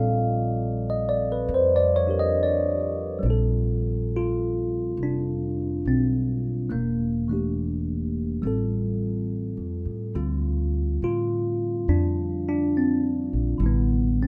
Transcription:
Already playing: upright bass A#1, tine electric piano G3 C4 F4 A4 D5 D#5 F5
0.90 tine electric piano D#5
1.09 tine electric piano D5
1.32 tine electric piano B4
1.49 upright bass F2
1.54 tine electric piano C5
1.76 tine electric piano D5
1.96 tine electric piano C#5
2.07 tine electric piano D4 G4 A#4
2.19 tine electric piano D#5
2.43 tine electric piano D5
3.19 tine electric piano G3 C4
3.23 upright bass A#1, tine electric piano F4
3.30 tine electric piano A4
4.17 tine electric piano F4
4.97 upright bass F1
5.03 tine electric piano D4
5.85 upright bass B1, tine electric piano C4
6.70 upright bass E1, tine electric piano A3 A#3
7.28 tine electric piano E3 A3 D4
7.33 tine electric piano G4
8.42 upright bass A1, tine electric piano G3 C4 F4
8.47 tine electric piano A4
9.57 upright bass F2
9.85 upright bass A2
10.15 upright bass D2, tine electric piano D3 G3 C4 F4
11.02 upright bass A2, tine electric piano F4
11.88 upright bass F2, tine electric piano D4
12.49 tine electric piano D4
12.77 tine electric piano C4
13.33 upright bass A#1
13.58 upright bass A1, tine electric piano D3 G3
13.62 tine electric piano C3 B3 E4
14.23 tine electric piano C4

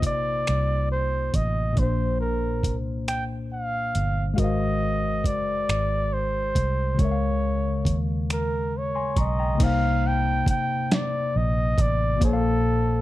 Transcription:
Already playing: tine electric piano C3 A#3 D#4 F4 C5
0.02 fingered electric bass A#1, flugelhorn D5, kick, closed hi-hat
0.47 fingered electric bass C2, finger snap, closed hi-hat
0.92 flugelhorn C5
1.34 fingered electric bass A1, flugelhorn D#5, kick, closed hi-hat
1.73 tine electric piano A#2 A#3
1.77 fingered electric bass A#1, tine electric piano D4, flugelhorn C5, kick, closed hi-hat
1.83 tine electric piano C5
2.21 flugelhorn A#4
2.63 fingered electric bass C2, kick, closed hi-hat
3.08 flugelhorn G5, finger snap, closed hi-hat
3.53 flugelhorn F5
3.95 fingered electric bass G1, closed hi-hat
4.34 tine electric piano G#3 F#4, flugelhorn F5
4.38 fingered electric bass G#1, tine electric piano A#4 C5, flugelhorn D#5, kick, closed hi-hat
4.44 tine electric piano F5
5.24 fingered electric bass F#1, flugelhorn D5, kick, closed hi-hat
5.69 fingered electric bass G#1, finger snap, closed hi-hat
6.13 flugelhorn C5
6.55 fingered electric bass C2, kick, closed hi-hat
6.94 tine electric piano C#3 G#3
6.99 fingered electric bass C#2, tine electric piano A#4, flugelhorn C#5, kick, closed hi-hat
7.05 tine electric piano E5
7.11 tine electric piano F5
7.85 fingered electric bass D#2, kick, closed hi-hat
8.30 flugelhorn A#4, finger snap, closed hi-hat
8.78 flugelhorn C#5
8.95 tine electric piano G#5 C6
9.16 fingered electric bass B1, tine electric piano A#5 C#6, kick, closed hi-hat
9.20 flugelhorn D#5
9.39 tine electric piano G5 A#5
9.55 tine electric piano C3 A#3
9.60 fingered electric bass C2, tine electric piano D#4 C5, flugelhorn F5, kick, closed hi-hat, crash
9.66 tine electric piano F5
10.07 flugelhorn G5
10.46 flugelhorn G5, muted fingered electric bass stroke, kick, closed hi-hat
10.91 flugelhorn D5, snare, closed hi-hat
11.36 fingered electric bass A#1, flugelhorn D#5
11.78 fingered electric bass A1, flugelhorn D5, kick, closed hi-hat
12.17 tine electric piano A#2 A#3
12.21 fingered electric bass A#1, flugelhorn A4, tine electric piano C5, kick, closed hi-hat
12.27 tine electric piano C#5
12.33 tine electric piano F5

